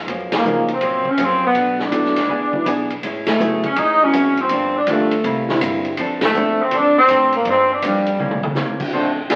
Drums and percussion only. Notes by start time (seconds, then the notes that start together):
0.07 kick, ride
0.32 snare, ride
0.44 hi-hat pedal
0.68 ride
0.81 kick, ride
1.05 kick
1.17 kick, hi-hat pedal, ride
1.55 kick, ride
1.79 snare
1.92 kick, hi-hat pedal, ride
2.05 snare
2.16 snare, ride
2.29 kick
2.53 kick
2.66 kick, hi-hat pedal, ride
2.90 ride
3.03 kick, ride
3.26 snare, ride
3.39 hi-hat pedal
3.63 kick, ride
3.76 kick, ride
4.13 kick, hi-hat pedal, ride
4.37 ride
4.49 kick, ride
4.87 kick, hi-hat pedal, ride
5.11 ride
5.24 kick, ride
5.49 snare
5.61 kick, hi-hat pedal, ride
5.85 ride
5.97 kick, ride
6.21 snare, ride
6.34 hi-hat pedal
6.71 kick, ride
7.08 kick, hi-hat pedal, ride
7.32 ride
7.45 kick, ride
7.82 kick, hi-hat pedal, ride
8.06 ride
8.19 mid tom
8.31 mid tom
8.43 mid tom
8.55 snare, hi-hat pedal
8.80 kick, crash
8.93 kick
9.30 kick, snare, hi-hat pedal, ride